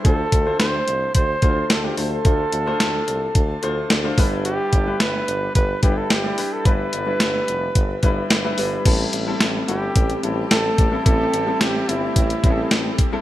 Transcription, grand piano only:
X:1
M:4/4
L:1/16
Q:1/4=109
K:Am
V:1 name="Grand piano"
[A,DFc]2 z [A,DFc]6 z [A,DFc]2 z [A,DFc] [A,DFc]2 | [A,DFc]2 z [A,DFc]6 z [A,DFc]2 z [A,DFc] [G,DEB]2- | [G,DEB]2 z [G,DEB]6 z [G,DEB]2 z [G,DEd] [G,DEB]2 | [G,DEB]2 z [G,DEB]6 z [G,DEB]2 z [G,DEB] [G,DEB]2 |
[G,CEA]2 z [G,CEA]2 z [G,CEA]3 z [G,CEA]4 z [G,CEA] | [G,CEG]2 z [G,CEA]2 z [G,CEA]3 z [G,CE_A=A]4 z [G,CEA] |]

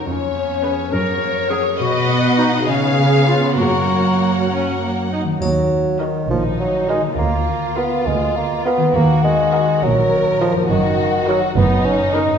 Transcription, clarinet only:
X:1
M:6/8
L:1/8
Q:3/8=68
K:F#
V:1 name="Clarinet"
C3 A2 G | F2 D C2 E | F3 z3 | [K:Ebm] z6 |
z6 | z6 | z6 |]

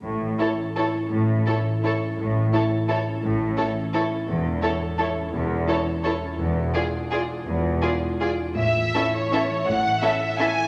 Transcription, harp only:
X:1
M:3/4
L:1/8
Q:1/4=168
K:A
V:1 name="Harp"
A,, E, C A E C | A,, E, C A E C | A,, E, C A E C | A,, E, C A E C |
E,, E, C A E C | E,, E, C A E C | E,, B,, D G =F D | E,, B,, D G =F D |
A,, E, E A2 E, | A,, C E A2 E, |]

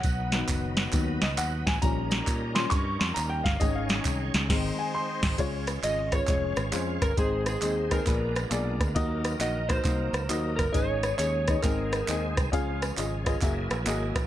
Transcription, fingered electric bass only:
X:1
M:4/4
L:1/8
Q:"Swing" 1/4=135
K:Db
V:1 name="Fingered electric bass" clef=bass
_C,,2 G,,,2 E,, D,, E,, =A,,, | B,,,2 B,,2 =G,, F,, E,, =G,,, | A,,,2 C,, D,, A,,, z2 A,,, | D,,2 A,,,2 F,,, A,,, F,, =G,,, |
A,,,2 E,,2 B,,,2 _C,, =D,, | E,,2 B,,,2 C,, D,, E,, =G,,, | A,,,2 E,,2 A,,,2 E,, C,, | D,,2 A,,,2 G,,, B,,, A,,, B,,, |]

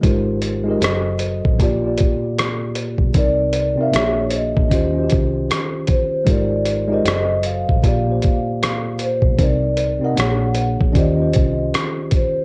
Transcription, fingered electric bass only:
X:1
M:4/4
L:1/16
Q:"Swing 16ths" 1/4=77
K:Gphr
V:1 name="Fingered electric bass" clef=bass
A,,,4 ^F,,,3 =A,,, B,,,2 z4 z =B,,, | C,,3 z B,,,3 B,,, E,,2 C,,2 z4 | A,,,4 ^F,,,3 =A,,, B,,,2 z4 z =B,,, | C,,3 z B,,,3 B,,, E,,2 C,,2 z4 |]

